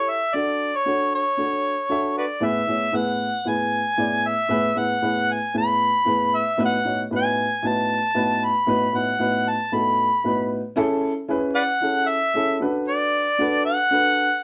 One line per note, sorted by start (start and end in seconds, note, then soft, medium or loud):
0.00 0.16 E4 medium
0.00 0.16 G4 medium
0.00 0.17 A4 medium
0.00 0.11 C#5 loud
0.00 0.17 C#5 medium
0.09 0.37 E5 loud
0.34 0.68 D4 medium
0.34 0.69 F#4 medium
0.34 0.69 A4 medium
0.34 0.77 D5 loud
0.34 0.69 D5 medium
0.76 1.14 C#5 loud
0.86 1.20 D4 medium
0.86 1.20 F#4 medium
0.86 1.21 A4 medium
0.86 1.21 C#5 medium
1.15 2.14 C#5 medium
1.37 1.72 D4 medium
1.37 1.72 F#4 medium
1.37 1.72 A4 medium
1.37 1.73 C#5 medium
1.89 2.24 D4 medium
1.89 2.24 F#4 medium
1.89 2.24 A4 medium
1.89 2.25 E5 medium
2.18 2.25 F#4 medium
2.18 2.26 B4 medium
2.18 2.47 D5 medium
2.40 2.58 A2 medium
2.40 2.59 B3 medium
2.40 2.59 E4 medium
2.40 2.59 G#4 medium
2.40 2.59 B4 loud
2.45 2.97 E5 loud
2.67 2.85 A2 medium
2.67 2.85 B3 medium
2.67 2.85 E4 medium
2.67 2.85 G#4 medium
2.67 2.86 C#5 medium
2.92 3.27 A2 medium
2.92 3.28 B3 medium
2.92 3.28 E4 medium
2.92 3.28 G#4 medium
2.92 3.28 B4 medium
2.92 3.50 F#5 medium
3.45 3.80 A2 medium
3.45 3.80 B3 medium
3.45 3.80 E4 medium
3.45 3.80 G#4 medium
3.45 3.80 B4 medium
3.45 4.29 G#5 loud
3.97 4.32 A2 medium
3.97 4.32 B3 medium
3.97 4.32 E4 medium
3.97 4.33 G#4 medium
3.97 4.33 D5 medium
4.27 4.80 E5 loud
4.49 4.67 A2 medium
4.49 4.67 B3 medium
4.49 4.67 E4 medium
4.49 4.67 G#4 medium
4.49 4.67 B4 loud
4.75 4.93 A2 medium
4.75 4.93 B3 medium
4.75 4.93 E4 medium
4.75 4.93 G#4 medium
4.75 4.94 B4 medium
4.75 5.34 F#5 loud
5.02 5.36 A2 medium
5.02 5.36 B3 medium
5.02 5.37 E4 medium
5.02 5.37 G#4 medium
5.02 5.37 B4 medium
5.32 5.57 G#5 medium
5.54 5.88 A2 medium
5.54 5.88 B3 medium
5.54 5.89 E4 medium
5.54 5.89 G#4 medium
5.54 5.89 B4 medium
5.54 6.37 B5 loud
6.05 6.40 A2 medium
6.05 6.40 B3 medium
6.05 6.41 E4 medium
6.05 6.41 G#4 medium
6.05 6.41 B4 medium
6.36 6.60 E5 medium
6.57 6.75 A2 medium
6.57 6.75 B3 medium
6.57 6.76 D#4 medium
6.57 6.76 F#4 medium
6.57 6.76 B4 loud
6.65 7.02 F#5 loud
6.85 7.02 A2 medium
6.85 7.02 B3 medium
6.85 7.02 D#4 medium
6.85 7.02 F#4 medium
6.85 7.03 C#5 medium
7.11 7.45 A2 medium
7.11 7.45 B3 medium
7.11 7.45 D#4 medium
7.11 7.46 F#4 medium
7.11 7.46 B4 medium
7.16 7.69 G#5 loud
7.62 7.97 A2 medium
7.62 7.98 B3 medium
7.62 7.98 D#4 medium
7.62 7.98 F#4 medium
7.62 7.98 B4 medium
7.67 8.46 A5 loud
8.14 8.49 A2 medium
8.14 8.49 B3 medium
8.14 8.50 D#4 medium
8.14 8.50 F#4 medium
8.14 8.50 B4 medium
8.45 8.98 B5 loud
8.66 8.84 A2 medium
8.66 8.84 B3 medium
8.66 8.85 D#4 medium
8.66 8.85 F#4 medium
8.66 8.85 B4 loud
8.93 9.10 A2 medium
8.93 9.11 B3 medium
8.93 9.11 D#4 medium
8.93 9.11 F#4 medium
8.93 9.11 B4 medium
8.93 9.51 F#5 medium
9.19 9.54 A2 medium
9.19 9.54 B3 medium
9.19 9.54 D#4 medium
9.19 9.55 F#4 medium
9.19 9.55 B4 medium
9.49 9.75 A5 medium
9.72 10.06 A2 medium
9.72 10.07 B3 medium
9.72 10.07 D#4 medium
9.72 10.07 F#4 medium
9.72 10.07 A4 medium
9.72 10.52 B5 loud
10.24 10.59 A2 medium
10.24 10.59 B3 medium
10.24 10.59 D#4 medium
10.24 10.59 F#4 medium
10.24 10.59 B4 medium
10.76 11.11 C#4 loud
10.76 11.11 E4 loud
10.76 11.11 G#4 loud
10.76 11.12 A4 loud
11.28 11.63 C#4 medium
11.28 11.63 E4 medium
11.28 11.64 G#4 medium
11.28 11.64 B4 loud
11.55 11.62 B4 medium
11.55 11.63 D5 medium
11.55 12.10 F#5 loud
11.81 12.16 C#4 medium
11.81 12.16 E4 medium
11.81 12.16 G#4 medium
11.81 12.17 A4 medium
12.08 12.61 E5 loud
12.34 12.60 C#4 medium
12.34 12.61 E4 medium
12.34 12.61 G#4 medium
12.34 12.60 A4 medium
12.60 13.23 D4 medium
12.60 13.24 F#4 medium
12.60 13.24 A4 medium
12.60 13.24 B4 medium
12.88 13.62 D5 loud
13.39 13.73 D4 medium
13.39 13.74 F#4 medium
13.39 13.74 A4 medium
13.39 13.74 B4 medium
13.65 14.44 F#5 loud
13.91 14.26 D4 medium
13.91 14.26 F#4 medium
13.91 14.26 A4 medium
13.91 14.26 B4 medium